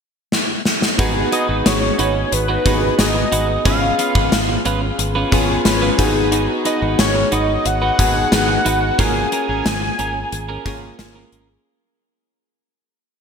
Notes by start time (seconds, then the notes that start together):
0.32 snare
0.65 snare
0.82 snare
0.98 G#1 B3 D#4 F#4 G#4 B4, kick, closed hi-hat
1.15 muted clean electric guitar stroke
1.32 D#4 F#4 B4 D#5, closed hi-hat
1.49 G#1 D#4 F#4 B4
1.66 G#1 C#5, snare, closed hi-hat
1.82 muted clean electric guitar stroke
1.99 G#1 D#4 F#4 B4, closed hi-hat
2.15 muted clean electric guitar stroke
2.32 G#1 B4, muted clean electric guitar stroke, closed hi-hat
2.48 D#4 F#4 B4
2.65 G#1 B3 D#4 F#4 G#4 B4, kick, closed hi-hat
2.82 muted clean electric guitar stroke
2.98 G#1 B3 D#4 F#4 G#4 D#5, snare, closed hi-hat
3.15 muted clean electric guitar stroke
3.32 G#1 D#4 F#4 B4, closed hi-hat
3.49 muted clean electric guitar stroke
3.65 G#1 B3 C#4 F4 G#4 B4 F5, kick, closed hi-hat
3.82 muted clean electric guitar stroke
3.98 C#4 F4 B4, closed hi-hat
4.15 G#1 C#4 F4 B4, kick
4.32 G#1, snare, closed hi-hat
4.49 muted clean electric guitar stroke
4.65 G#1 C#4 F4 B4, closed hi-hat
4.82 muted clean electric guitar stroke
4.99 G#1, muted clean electric guitar stroke, closed hi-hat
5.15 C#4 F4 B4
5.31 G#1 B3 C#4 F4 G#4 B4, kick, closed hi-hat
5.49 muted clean electric guitar stroke
5.65 G#1 B3 C#4 F4 B4, muted clean electric guitar stroke, snare, closed hi-hat
5.82 C#4 F4 B4
5.98 G#1 B3 D#4 F#4 G#4 B4, kick, closed hi-hat
6.15 muted clean electric guitar stroke
6.32 D#4 F#4 B4, closed hi-hat
6.48 muted clean electric guitar stroke
6.65 D#4 F#4 B4 D#5, closed hi-hat
6.82 G#1 D#4 F#4 B4
6.99 G#1 C#5, snare, closed hi-hat
7.15 muted clean electric guitar stroke
7.32 G#1 D#4 F#4 B4 D#5, closed hi-hat
7.48 muted clean electric guitar stroke
7.65 G#1 F#5, muted clean electric guitar stroke, closed hi-hat
7.82 D#4 F#4 B4
7.98 G#1 B3 D#4 F#4 G#4 B4, kick, closed hi-hat
8.15 muted clean electric guitar stroke
8.31 G#1 B3 D#4 F#4 G#4, snare, closed hi-hat
8.48 muted clean electric guitar stroke
8.65 G#1 D#4 F#4 B4, closed hi-hat
8.82 muted clean electric guitar stroke
8.98 G#1 A#3 C#4 F4 G#4 A#4 G#5, kick, closed hi-hat
9.15 muted clean electric guitar stroke
9.32 C#4 G#4 A#4, closed hi-hat
9.48 G#1 C#4 G#4 A#4
9.66 G#1, snare, closed hi-hat
9.82 muted clean electric guitar stroke
9.99 G#1 C#4 G#4 A#4, closed hi-hat
10.15 muted clean electric guitar stroke
10.32 G#1, muted clean electric guitar stroke, closed hi-hat
10.49 C#4 G#4 A#4
10.65 G#1 A#3 C#4 F4 G#4 A#4, kick, closed hi-hat
10.82 muted clean electric guitar stroke
10.98 G#1 A#3 C#4 F4 G#4, muted clean electric guitar stroke, snare, closed hi-hat
11.15 C#4 G#4 A#4
11.32 G#1 C#4 G#4 A#4, closed hi-hat
11.49 muted clean electric guitar stroke